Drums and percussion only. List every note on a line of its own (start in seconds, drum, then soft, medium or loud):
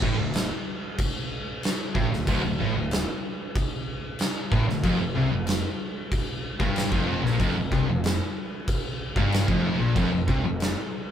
0.02 kick loud
0.34 snare loud
0.34 crash medium
0.98 kick loud
0.98 crash medium
1.63 snare loud
1.63 crash medium
1.95 kick loud
2.13 snare soft
2.27 kick loud
2.27 crash medium
2.91 snare loud
2.91 crash medium
3.56 kick loud
3.56 crash medium
4.19 snare loud
4.19 crash medium
4.52 kick loud
4.69 snare soft
4.83 kick loud
4.83 crash medium
5.47 snare loud
5.47 crash medium
6.12 kick loud
6.12 crash medium
6.60 kick loud
6.76 snare loud
6.76 crash medium
6.92 kick loud
7.26 snare soft
7.40 kick loud
7.40 crash medium
7.72 kick loud
8.04 snare loud
8.04 crash medium
8.68 kick loud
8.68 crash medium
9.16 kick loud
9.32 snare loud
9.32 crash medium
9.48 kick loud
9.96 kick loud
9.96 crash medium
10.28 kick loud
10.60 snare loud
10.60 crash medium